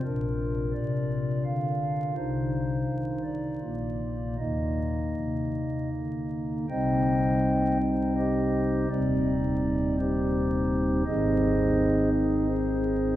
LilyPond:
<<
  \new Staff \with { instrumentName = "Pipe organ" } { \time 3/4 \key bes \mixolydian \tempo 4 = 83 << { bes'4 d''4 f''4 | c''4. d''4. | ees''2 r4 | \key c \minor <c'' ees'' g''>4. c''8 <g' c'' ees''>4 |
d''4. <ees' g' c''>4. | <aes' c'' ees''>4. aes'8 <ees' aes' c''>4 | } \\ { <d' f'>2. | ees'2 <bes f'>4 | <bes ees'>2. | <c g c' ees'>2. |
<ees, g c' ees'>2. | <aes, ees c' ees'>2. | } >> }
  \new Staff \with { instrumentName = "Pipe organ" } { \clef bass \time 3/4 \key bes \mixolydian <bes,, bes,>4 c4 d4 | <c, c>4 ees4 <bes,, bes,>4 | <ees, ees>4 c4 d4 | \key c \minor c,2. |
ees,,2. | aes,,2. | }
>>